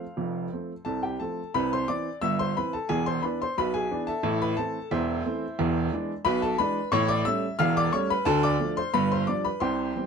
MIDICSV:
0, 0, Header, 1, 2, 480
1, 0, Start_track
1, 0, Key_signature, 0, "major"
1, 0, Tempo, 674157
1, 133, Time_signature, 2, 2, 24, 8
1, 7166, End_track
2, 0, Start_track
2, 0, Title_t, "Upright piano"
2, 0, Program_c, 0, 0
2, 0, Note_on_c, 0, 69, 62
2, 0, Note_on_c, 0, 72, 56
2, 0, Note_on_c, 0, 77, 81
2, 121, Note_on_c, 0, 29, 66
2, 122, Note_on_c, 0, 41, 71
2, 313, Note_off_c, 0, 77, 0
2, 332, Note_off_c, 0, 29, 0
2, 332, Note_off_c, 0, 41, 0
2, 370, Note_on_c, 0, 53, 37
2, 374, Note_on_c, 0, 60, 43
2, 375, Note_on_c, 0, 57, 35
2, 504, Note_off_c, 0, 53, 0
2, 507, Note_off_c, 0, 57, 0
2, 507, Note_off_c, 0, 60, 0
2, 582, Note_off_c, 0, 69, 0
2, 583, Note_off_c, 0, 72, 0
2, 604, Note_on_c, 0, 81, 86
2, 609, Note_on_c, 0, 48, 66
2, 610, Note_on_c, 0, 36, 64
2, 612, Note_on_c, 0, 69, 62
2, 726, Note_off_c, 0, 69, 0
2, 731, Note_off_c, 0, 81, 0
2, 732, Note_on_c, 0, 79, 72
2, 740, Note_on_c, 0, 67, 53
2, 818, Note_off_c, 0, 36, 0
2, 818, Note_off_c, 0, 48, 0
2, 851, Note_off_c, 0, 67, 0
2, 852, Note_on_c, 0, 81, 77
2, 856, Note_off_c, 0, 79, 0
2, 860, Note_on_c, 0, 53, 41
2, 860, Note_on_c, 0, 57, 38
2, 861, Note_on_c, 0, 69, 58
2, 863, Note_on_c, 0, 60, 42
2, 992, Note_off_c, 0, 53, 0
2, 993, Note_off_c, 0, 57, 0
2, 995, Note_off_c, 0, 60, 0
2, 1084, Note_off_c, 0, 69, 0
2, 1084, Note_off_c, 0, 81, 0
2, 1099, Note_on_c, 0, 83, 110
2, 1101, Note_on_c, 0, 48, 100
2, 1103, Note_on_c, 0, 36, 84
2, 1107, Note_on_c, 0, 71, 84
2, 1215, Note_off_c, 0, 71, 0
2, 1220, Note_off_c, 0, 83, 0
2, 1231, Note_on_c, 0, 84, 99
2, 1238, Note_on_c, 0, 72, 73
2, 1305, Note_off_c, 0, 48, 0
2, 1306, Note_off_c, 0, 36, 0
2, 1339, Note_on_c, 0, 86, 100
2, 1340, Note_on_c, 0, 52, 58
2, 1342, Note_off_c, 0, 72, 0
2, 1345, Note_on_c, 0, 60, 64
2, 1346, Note_off_c, 0, 84, 0
2, 1348, Note_on_c, 0, 74, 72
2, 1473, Note_off_c, 0, 52, 0
2, 1476, Note_off_c, 0, 60, 0
2, 1532, Note_off_c, 0, 86, 0
2, 1568, Note_off_c, 0, 74, 0
2, 1577, Note_on_c, 0, 88, 108
2, 1582, Note_on_c, 0, 31, 90
2, 1582, Note_on_c, 0, 43, 84
2, 1590, Note_on_c, 0, 76, 88
2, 1698, Note_off_c, 0, 76, 0
2, 1699, Note_off_c, 0, 88, 0
2, 1704, Note_on_c, 0, 84, 100
2, 1712, Note_on_c, 0, 72, 72
2, 1786, Note_off_c, 0, 31, 0
2, 1786, Note_off_c, 0, 43, 0
2, 1819, Note_off_c, 0, 72, 0
2, 1823, Note_off_c, 0, 84, 0
2, 1829, Note_on_c, 0, 83, 93
2, 1831, Note_on_c, 0, 52, 54
2, 1835, Note_on_c, 0, 60, 63
2, 1837, Note_on_c, 0, 71, 73
2, 1942, Note_off_c, 0, 71, 0
2, 1945, Note_off_c, 0, 83, 0
2, 1945, Note_on_c, 0, 81, 88
2, 1953, Note_on_c, 0, 69, 70
2, 1961, Note_off_c, 0, 52, 0
2, 1963, Note_off_c, 0, 60, 0
2, 2057, Note_on_c, 0, 80, 105
2, 2059, Note_off_c, 0, 69, 0
2, 2059, Note_on_c, 0, 28, 89
2, 2061, Note_on_c, 0, 40, 98
2, 2064, Note_off_c, 0, 81, 0
2, 2067, Note_on_c, 0, 68, 85
2, 2176, Note_off_c, 0, 68, 0
2, 2180, Note_off_c, 0, 80, 0
2, 2181, Note_on_c, 0, 84, 97
2, 2190, Note_on_c, 0, 72, 71
2, 2265, Note_off_c, 0, 28, 0
2, 2265, Note_off_c, 0, 40, 0
2, 2295, Note_on_c, 0, 83, 84
2, 2298, Note_off_c, 0, 72, 0
2, 2301, Note_off_c, 0, 84, 0
2, 2302, Note_on_c, 0, 52, 55
2, 2305, Note_on_c, 0, 59, 51
2, 2305, Note_on_c, 0, 62, 56
2, 2310, Note_on_c, 0, 71, 61
2, 2418, Note_off_c, 0, 71, 0
2, 2419, Note_off_c, 0, 83, 0
2, 2432, Note_on_c, 0, 84, 92
2, 2434, Note_off_c, 0, 52, 0
2, 2436, Note_off_c, 0, 59, 0
2, 2436, Note_off_c, 0, 62, 0
2, 2443, Note_on_c, 0, 72, 71
2, 2545, Note_off_c, 0, 72, 0
2, 2547, Note_off_c, 0, 84, 0
2, 2548, Note_on_c, 0, 35, 88
2, 2549, Note_on_c, 0, 83, 106
2, 2550, Note_on_c, 0, 47, 86
2, 2556, Note_on_c, 0, 71, 83
2, 2661, Note_off_c, 0, 71, 0
2, 2662, Note_on_c, 0, 80, 94
2, 2666, Note_off_c, 0, 83, 0
2, 2671, Note_on_c, 0, 68, 71
2, 2749, Note_off_c, 0, 35, 0
2, 2751, Note_off_c, 0, 47, 0
2, 2786, Note_on_c, 0, 59, 58
2, 2787, Note_on_c, 0, 52, 55
2, 2787, Note_on_c, 0, 62, 64
2, 2854, Note_off_c, 0, 80, 0
2, 2891, Note_off_c, 0, 68, 0
2, 2898, Note_on_c, 0, 81, 101
2, 2906, Note_on_c, 0, 76, 73
2, 2910, Note_on_c, 0, 69, 72
2, 2917, Note_off_c, 0, 59, 0
2, 2918, Note_off_c, 0, 52, 0
2, 2918, Note_off_c, 0, 62, 0
2, 3014, Note_on_c, 0, 33, 97
2, 3014, Note_on_c, 0, 45, 106
2, 3128, Note_off_c, 0, 76, 0
2, 3128, Note_off_c, 0, 81, 0
2, 3130, Note_off_c, 0, 69, 0
2, 3145, Note_on_c, 0, 83, 96
2, 3149, Note_on_c, 0, 71, 78
2, 3221, Note_off_c, 0, 33, 0
2, 3222, Note_off_c, 0, 45, 0
2, 3252, Note_on_c, 0, 81, 100
2, 3256, Note_on_c, 0, 52, 63
2, 3257, Note_off_c, 0, 71, 0
2, 3260, Note_on_c, 0, 57, 59
2, 3262, Note_on_c, 0, 69, 75
2, 3264, Note_off_c, 0, 83, 0
2, 3264, Note_on_c, 0, 60, 56
2, 3389, Note_off_c, 0, 52, 0
2, 3392, Note_off_c, 0, 57, 0
2, 3395, Note_off_c, 0, 60, 0
2, 3484, Note_off_c, 0, 81, 0
2, 3485, Note_off_c, 0, 69, 0
2, 3497, Note_on_c, 0, 76, 99
2, 3499, Note_on_c, 0, 40, 100
2, 3500, Note_on_c, 0, 28, 103
2, 3504, Note_on_c, 0, 64, 77
2, 3504, Note_on_c, 0, 72, 75
2, 3702, Note_off_c, 0, 40, 0
2, 3703, Note_off_c, 0, 28, 0
2, 3742, Note_on_c, 0, 57, 63
2, 3745, Note_on_c, 0, 52, 58
2, 3746, Note_on_c, 0, 60, 66
2, 3872, Note_off_c, 0, 57, 0
2, 3875, Note_off_c, 0, 52, 0
2, 3875, Note_off_c, 0, 60, 0
2, 3979, Note_on_c, 0, 40, 110
2, 3983, Note_on_c, 0, 28, 104
2, 4181, Note_off_c, 0, 40, 0
2, 4183, Note_off_c, 0, 28, 0
2, 4185, Note_off_c, 0, 76, 0
2, 4189, Note_off_c, 0, 64, 0
2, 4189, Note_off_c, 0, 72, 0
2, 4219, Note_on_c, 0, 52, 64
2, 4224, Note_on_c, 0, 56, 60
2, 4228, Note_on_c, 0, 62, 68
2, 4349, Note_off_c, 0, 52, 0
2, 4353, Note_off_c, 0, 56, 0
2, 4356, Note_off_c, 0, 62, 0
2, 4447, Note_on_c, 0, 83, 127
2, 4453, Note_on_c, 0, 35, 112
2, 4454, Note_on_c, 0, 47, 105
2, 4459, Note_on_c, 0, 71, 98
2, 4567, Note_off_c, 0, 71, 0
2, 4570, Note_off_c, 0, 83, 0
2, 4573, Note_on_c, 0, 81, 109
2, 4581, Note_on_c, 0, 69, 83
2, 4656, Note_off_c, 0, 35, 0
2, 4657, Note_off_c, 0, 47, 0
2, 4688, Note_on_c, 0, 83, 115
2, 4689, Note_off_c, 0, 69, 0
2, 4693, Note_off_c, 0, 81, 0
2, 4693, Note_on_c, 0, 52, 65
2, 4694, Note_on_c, 0, 71, 86
2, 4697, Note_on_c, 0, 56, 68
2, 4698, Note_on_c, 0, 62, 73
2, 4824, Note_off_c, 0, 52, 0
2, 4827, Note_off_c, 0, 56, 0
2, 4828, Note_off_c, 0, 62, 0
2, 4916, Note_off_c, 0, 71, 0
2, 4917, Note_off_c, 0, 83, 0
2, 4925, Note_on_c, 0, 85, 127
2, 4930, Note_on_c, 0, 45, 120
2, 4933, Note_on_c, 0, 33, 105
2, 4937, Note_on_c, 0, 73, 102
2, 5044, Note_on_c, 0, 86, 117
2, 5045, Note_off_c, 0, 73, 0
2, 5048, Note_off_c, 0, 85, 0
2, 5053, Note_on_c, 0, 74, 90
2, 5134, Note_off_c, 0, 45, 0
2, 5135, Note_off_c, 0, 33, 0
2, 5163, Note_off_c, 0, 74, 0
2, 5163, Note_on_c, 0, 88, 121
2, 5166, Note_off_c, 0, 86, 0
2, 5166, Note_on_c, 0, 57, 71
2, 5167, Note_on_c, 0, 55, 74
2, 5172, Note_on_c, 0, 61, 77
2, 5173, Note_on_c, 0, 76, 92
2, 5299, Note_off_c, 0, 55, 0
2, 5299, Note_off_c, 0, 57, 0
2, 5303, Note_off_c, 0, 61, 0
2, 5356, Note_off_c, 0, 88, 0
2, 5393, Note_off_c, 0, 76, 0
2, 5402, Note_on_c, 0, 89, 127
2, 5408, Note_on_c, 0, 28, 121
2, 5408, Note_on_c, 0, 40, 111
2, 5411, Note_on_c, 0, 77, 107
2, 5521, Note_off_c, 0, 77, 0
2, 5524, Note_off_c, 0, 89, 0
2, 5531, Note_on_c, 0, 86, 121
2, 5538, Note_on_c, 0, 74, 90
2, 5611, Note_off_c, 0, 28, 0
2, 5611, Note_off_c, 0, 40, 0
2, 5644, Note_off_c, 0, 74, 0
2, 5644, Note_on_c, 0, 85, 105
2, 5648, Note_on_c, 0, 57, 69
2, 5649, Note_off_c, 0, 86, 0
2, 5649, Note_on_c, 0, 55, 74
2, 5653, Note_on_c, 0, 73, 77
2, 5655, Note_on_c, 0, 61, 76
2, 5761, Note_off_c, 0, 73, 0
2, 5765, Note_off_c, 0, 85, 0
2, 5770, Note_on_c, 0, 83, 110
2, 5779, Note_off_c, 0, 57, 0
2, 5780, Note_off_c, 0, 55, 0
2, 5781, Note_on_c, 0, 71, 87
2, 5784, Note_off_c, 0, 61, 0
2, 5877, Note_on_c, 0, 81, 127
2, 5879, Note_on_c, 0, 38, 111
2, 5883, Note_on_c, 0, 50, 127
2, 5885, Note_off_c, 0, 71, 0
2, 5887, Note_off_c, 0, 83, 0
2, 5889, Note_on_c, 0, 69, 104
2, 5999, Note_off_c, 0, 69, 0
2, 6001, Note_off_c, 0, 81, 0
2, 6005, Note_on_c, 0, 86, 119
2, 6013, Note_on_c, 0, 74, 93
2, 6086, Note_off_c, 0, 38, 0
2, 6087, Note_off_c, 0, 50, 0
2, 6121, Note_on_c, 0, 53, 67
2, 6125, Note_on_c, 0, 57, 68
2, 6129, Note_on_c, 0, 62, 74
2, 6197, Note_off_c, 0, 86, 0
2, 6232, Note_off_c, 0, 74, 0
2, 6244, Note_on_c, 0, 84, 109
2, 6254, Note_off_c, 0, 53, 0
2, 6254, Note_on_c, 0, 72, 78
2, 6257, Note_off_c, 0, 57, 0
2, 6260, Note_off_c, 0, 62, 0
2, 6362, Note_off_c, 0, 72, 0
2, 6362, Note_on_c, 0, 83, 122
2, 6365, Note_off_c, 0, 84, 0
2, 6365, Note_on_c, 0, 43, 112
2, 6368, Note_on_c, 0, 31, 104
2, 6371, Note_on_c, 0, 71, 90
2, 6481, Note_off_c, 0, 71, 0
2, 6485, Note_off_c, 0, 83, 0
2, 6490, Note_on_c, 0, 84, 95
2, 6498, Note_on_c, 0, 72, 74
2, 6571, Note_off_c, 0, 43, 0
2, 6573, Note_off_c, 0, 31, 0
2, 6600, Note_on_c, 0, 86, 98
2, 6605, Note_off_c, 0, 72, 0
2, 6605, Note_on_c, 0, 53, 57
2, 6609, Note_off_c, 0, 84, 0
2, 6609, Note_on_c, 0, 55, 55
2, 6613, Note_on_c, 0, 62, 65
2, 6613, Note_on_c, 0, 74, 77
2, 6724, Note_off_c, 0, 74, 0
2, 6725, Note_on_c, 0, 83, 94
2, 6726, Note_off_c, 0, 86, 0
2, 6733, Note_on_c, 0, 71, 69
2, 6739, Note_off_c, 0, 53, 0
2, 6742, Note_off_c, 0, 55, 0
2, 6745, Note_off_c, 0, 62, 0
2, 6837, Note_on_c, 0, 84, 95
2, 6843, Note_on_c, 0, 36, 90
2, 6843, Note_on_c, 0, 48, 96
2, 6844, Note_off_c, 0, 71, 0
2, 6846, Note_on_c, 0, 72, 74
2, 6847, Note_on_c, 0, 79, 75
2, 6849, Note_off_c, 0, 83, 0
2, 7053, Note_off_c, 0, 36, 0
2, 7053, Note_off_c, 0, 48, 0
2, 7089, Note_on_c, 0, 52, 53
2, 7094, Note_on_c, 0, 55, 52
2, 7099, Note_on_c, 0, 60, 61
2, 7166, Note_off_c, 0, 52, 0
2, 7166, Note_off_c, 0, 55, 0
2, 7166, Note_off_c, 0, 60, 0
2, 7166, Note_off_c, 0, 72, 0
2, 7166, Note_off_c, 0, 79, 0
2, 7166, Note_off_c, 0, 84, 0
2, 7166, End_track
0, 0, End_of_file